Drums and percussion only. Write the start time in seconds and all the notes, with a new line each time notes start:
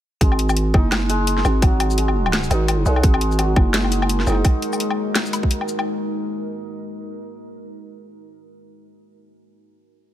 0.21 kick, closed hi-hat
0.32 low woodblock
0.39 closed hi-hat
0.49 low woodblock, shaker
0.57 closed hi-hat
0.74 kick, low woodblock
0.92 snare, closed hi-hat, low woodblock
1.10 closed hi-hat, shaker
1.27 closed hi-hat
1.38 snare
1.45 low woodblock, shaker
1.62 kick, closed hi-hat, low woodblock
1.80 closed hi-hat, low woodblock
1.91 shaker
1.98 closed hi-hat
2.08 low woodblock
2.26 low woodblock
2.33 snare, closed hi-hat
2.44 shaker
2.51 closed hi-hat, low woodblock, shaker
2.68 closed hi-hat, low woodblock
2.86 shaker
2.96 low woodblock
3.03 kick, closed hi-hat
3.14 low woodblock
3.21 closed hi-hat
3.32 shaker
3.39 closed hi-hat, low woodblock
3.56 kick, low woodblock
3.74 snare, closed hi-hat
3.84 low woodblock
3.92 closed hi-hat, shaker
4.02 low woodblock
4.09 closed hi-hat
4.20 snare
4.27 low woodblock, shaker
4.30 low woodblock
4.32 low woodblock
4.45 kick, closed hi-hat, low woodblock
4.62 closed hi-hat
4.73 low woodblock, shaker
4.80 closed hi-hat
4.90 low woodblock
5.15 snare, closed hi-hat, low woodblock
5.26 shaker
5.33 closed hi-hat, low woodblock, shaker
5.43 kick
5.51 closed hi-hat
5.61 low woodblock
5.68 shaker
5.79 low woodblock